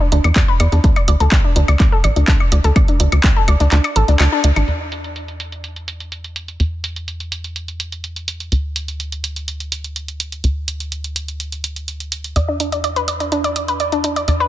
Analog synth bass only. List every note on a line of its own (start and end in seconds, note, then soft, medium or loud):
0.12 0.20 D2 medium
0.24 0.32 E2 medium
0.36 0.44 E2 loud
0.60 0.68 E2 loud
0.72 0.80 E2 medium
0.84 0.92 D2 loud
1.08 1.16 D2 medium
1.20 1.28 D2 medium
1.32 1.40 D2 loud
1.56 1.64 D2 medium
1.68 1.76 D2 medium
1.80 1.88 D2 loud
2.04 2.12 A1 medium
2.16 2.24 D2 medium
2.28 2.36 D2 loud
2.52 2.60 D2 loud
2.64 2.72 D2 medium
2.76 2.84 D2 loud
3.00 3.08 D2 loud
3.12 3.20 D2 medium
3.24 3.32 D2 loud
3.48 3.56 D2 medium
3.60 3.68 D2 medium
3.72 3.80 D2 loud
3.96 4.04 A1 medium
4.08 4.16 D2 medium
4.20 4.28 D2 loud
4.44 4.52 D2 loud
4.56 4.64 A1 medium
4.68 6.58 E2 medium
6.60 8.50 E2 medium
8.52 10.42 D2 medium
10.44 12.34 D2 medium
12.36 14.26 E2 medium
14.28 14.48 E2 medium